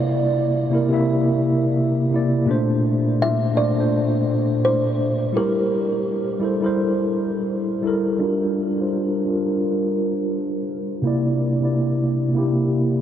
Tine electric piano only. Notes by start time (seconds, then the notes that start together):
Already playing: C3 A#3 E4 D5
0.70 C3 A#3 E4
0.75 A#4
0.89 C3 A#3 E4
0.94 E5
2.11 C3 A#3 E4
2.16 D5
2.46 A#2 A3 D4
2.51 C5
3.51 A#2 A3 D4
3.56 C5
3.75 A#2 A3 D4
3.80 C5
5.32 G3 E4 G4
5.37 A#4
6.39 G3 E4 A4
6.44 C5
6.61 G3 E4 A#4
6.66 C5
7.82 G3 E4 A4
7.87 A#4
8.19 G3 D4 F4
8.24 A#4
8.76 G3 D4 F4
8.81 C5
9.25 G3 D4 F4
9.29 A#4
11.02 C3 A#3 E4
11.07 D5
11.60 C3 A#3 E4
11.65 D5
12.33 C3 A#3 E4
12.38 G4